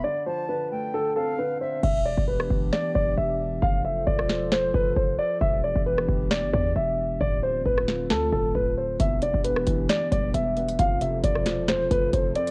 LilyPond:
<<
  \new Staff \with { instrumentName = "Flute" } { \time 4/4 \key e \phrygian \tempo 4 = 134 r8 a''4 g''4 f''4 e''8 | r1 | r1 | r1 |
r1 | r1 | r1 | }
  \new Staff \with { instrumentName = "Grand piano" } { \time 4/4 \key e \phrygian d''8 c''8 b'4 a'8 a'8 b'8 c''8 | e''8 d''8 b'4 d''8 d''8 e''4 | f''8 e''8 d''4 c''8 b'8 c''8 d''8 | e''8 d''8 b'4 d''8 d''8 e''4 |
d''8 c''8 b'4 a'8 a'8 b'8 c''8 | e''8 d''8 b'4 d''8 d''8 e''4 | f''8 e''8 d''4 c''8 b'8 c''8 d''8 | }
  \new Staff \with { instrumentName = "Analog synth pad" } { \time 4/4 \key e \phrygian r1 | <e b d' g'>1 | <f f' a' c''>1 | <e b d' g'>1 |
<d a c' f'>1 | <e b d' g'>1 | <f f' a' c''>1 | }
  \new Staff \with { instrumentName = "Felt piano" } { \clef bass \time 4/4 \key e \phrygian d8 f8 d8 a8 d8 c'8 d8 d'8 | r1 | r1 | r1 |
r1 | e,8 d8 e,8 e8 e,8 g8 e,8 b8 | f,8 c4 f8 f,8 a8 f,8 c'8 | }
  \new Staff \with { instrumentName = "808-style bass" } { \clef bass \time 4/4 \key e \phrygian r1 | e,,8. e,,8. e,,8 r8 e,,8 e,,4 | f,,4 e,,4. f,,8 f,,8 r8 | e,,8. e,,8. e,,8. g,,16 e,8 e,,4 |
d,,4 d,,4 d,8 d,,8 d,,4 | e,,8. e,,8. e,,8 r8 e,,8 e,,4 | f,,4 e,,4. f,,8 f,,8 r8 | }
  \new DrumStaff \with { instrumentName = "Drums" } \drummode { \time 4/4 r4 r4 r4 r4 | <cymc bd>8. bd16 r16 ss16 bd8 sn8 bd8 r4 | bd4 bd16 ss16 sn8 sn8 bd8 bd4 | bd8. bd16 r16 ss16 bd8 sn8 bd8 r4 |
bd4 bd16 ss16 sn8 sn8 bd8 bd4 | <hh bd>8 hh16 bd16 hh16 ss16 <hh bd>8 <hh sn>8 <hh bd>8 hh8 hh16 hh16 | <hh bd>8 hh8 <hh bd>16 ss16 <hh sn>8 <hh sn>8 <hh bd>8 <hh bd>8 <hh hho>16 hh16 | }
>>